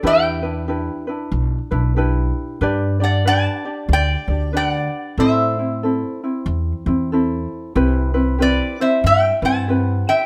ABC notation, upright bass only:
X:1
M:4/4
L:1/8
Q:"Swing" 1/4=93
K:G
V:1 name="Upright bass" clef=bass
E,,4 B,,, B,,,3 | G,,4 D,, D,,3 | A,,4 E,, E,,3 | C,,4 G,, G,,3 |]